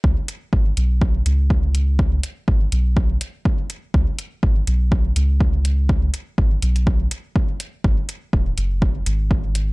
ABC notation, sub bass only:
X:1
M:4/4
L:1/8
Q:"Swing 16ths" 1/4=123
K:G#phr
V:1 name="Sub bass" clef=bass
C,, z G,,, B,,,2 C,,3- | C,, z G,,, B,,,2 z3 | C,, z G,,, B,,,2 C,,3- | C,, z G,,, B,,,2 z3 |
G,,, z D,,, F,,,2 G,,,3 |]